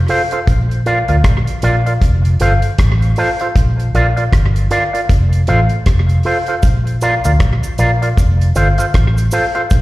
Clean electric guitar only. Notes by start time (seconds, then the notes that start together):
0.09 F4 A4 C5 F5
0.32 F4 A4 C5 F5
0.86 F4 A#4 D5 F5
1.09 F4 A#4 D5 F5
1.63 F4 A#4 D5 F5
1.86 F4 A#4 D5 F5
2.41 F4 A4 C5 F5
3.18 F4 A4 C5 F5
3.41 F4 A4 C5 F5
3.95 F4 A#4 D5 F5
4.17 F4 A#4 D5 F5
4.71 F4 A#4 D5 F5
4.93 F4 A#4 D5 F5
5.48 F4 A4 C5 F5
6.25 F4 A4 C5 F5
6.48 F4 A4 C5 F5
7.02 F4 A#4 D5 F5
7.25 F4 A#4 D5 F5
7.79 F4 A#4 D5 F5
8.02 F4 A#4 D5 F5
8.56 F4 A4 C5 F5
8.78 F4 A4 C5 F5
9.32 F4 A4 C5 F5
9.55 F4 A4 C5 F5